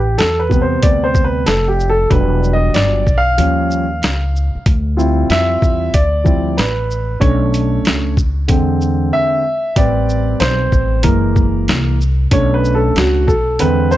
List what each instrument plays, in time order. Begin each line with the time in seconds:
Already playing: upright bass A1, grand piano G4
0.18 upright bass E2, grand piano A4, snare, closed hi-hat
0.40 grand piano B4
0.49 grand piano C3 G3 B3, kick, shaker
0.62 grand piano C5
0.83 upright bass D2, grand piano D5, kick, closed hi-hat
1.04 grand piano C5
1.15 kick, shaker
1.24 grand piano B4
1.46 upright bass F1, grand piano A4, snare, closed hi-hat
1.68 grand piano G4
1.80 shaker
1.90 grand piano A4
2.10 upright bass E1, grand piano F#3 G3 D4 B4, kick, closed hi-hat
2.44 shaker
2.53 grand piano D#5
2.74 upright bass G1, grand piano D5, snare, closed hi-hat
3.07 upright bass B1, kick, shaker
3.18 grand piano F5
3.38 upright bass D#2, grand piano F3 G3 C#4, closed hi-hat
3.71 shaker
4.02 upright bass C#2, snare, closed hi-hat
4.36 shaker
4.55 muted upright bass stroke
4.66 upright bass D2, kick, closed hi-hat
4.97 grand piano G3 C4 E4 F4, shaker
5.30 upright bass F2, grand piano E5, snare, closed hi-hat
5.62 upright bass E2, kick, shaker
5.94 upright bass D2, grand piano D5, kick, closed hi-hat
6.24 grand piano F3 G3 C4 E4, kick, shaker
6.57 upright bass A1, grand piano B4, snare, closed hi-hat
6.91 shaker
7.20 upright bass B1, grand piano A3 C#4 D4 C#5, kick, closed hi-hat
7.54 closed hi-hat, shaker
7.85 upright bass C#2, snare, closed hi-hat
8.17 kick, shaker
8.48 upright bass E2, grand piano D3 G#3 C4, kick, closed hi-hat
8.81 shaker
9.13 grand piano E5
9.76 upright bass A1, grand piano G3 C4 B4 D5, kick, closed hi-hat
10.09 shaker
10.40 upright bass B1, grand piano C5, snare, closed hi-hat
10.72 upright bass A1, kick, shaker
11.03 upright bass F#1, grand piano E3 G#3 A#3 A#4, kick, closed hi-hat
11.36 kick, shaker
11.68 upright bass C2, snare, closed hi-hat
12.01 shaker
12.31 upright bass B1, grand piano A3 C#4 D4 C#5, kick, closed hi-hat
12.54 grand piano B4
12.65 shaker
12.75 grand piano A4
12.96 upright bass C#2, grand piano F#4, snare, closed hi-hat
13.27 upright bass B1, grand piano A4, kick, shaker
13.59 upright bass E2, grand piano D3 G#3 C4 B4, closed hi-hat
13.91 grand piano C5, shaker